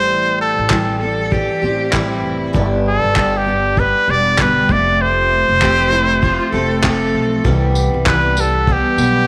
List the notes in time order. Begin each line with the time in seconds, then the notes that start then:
Already playing: A1 A2 E3 G3 C4 G4 C5
0.41 A4
0.58 A1
0.69 A2 E3 G3 C4 G4, kick, clap
1.00 G3 C4 G4 A4
1.30 E3 G3 C4 G4, kick
1.62 A1 G3 C4 G4
1.92 A2 E3 G3 C4 E4 G4, kick, clap
2.23 F1
2.53 G1 G2 D3 G3 B3 D4 G4, kick
2.88 A4
3.03 G1
3.15 G2 D3 G3 B3 D4 G4, kick, clap
3.37 G4
3.45 G3 B3 D4 G4
3.77 G3 B3 D4 G4 B4, kick
4.08 E1 G3 B3 D4 G4 D5
4.39 G2 D3 G3 B3 D4 G4 B4, kick, clap
4.68 F1 F3 A3 C4 G4 D5, kick
5.01 C5
5.48 F1
5.61 F3 A3 C4 G4, kick, clap
5.91 A3 C4 E4 G4
6.22 F3 A3 C4 F4 G4, kick
6.52 F1 A3 C4 G4 A4
6.82 F3 A3 C4 G4 A4, kick, clap
7.14 B1
7.44 C2 C3 E3 G3 B3 G4, kick
7.75 tambourine
7.94 C2
8.06 C3 E3 G3 B3 G4 B4, kick, clap
8.36 G3 B3 G4, tambourine
8.41 A4
8.67 E3 G3 B3 G4, kick
8.72 G4
8.97 B1 G3 B3 G4, tambourine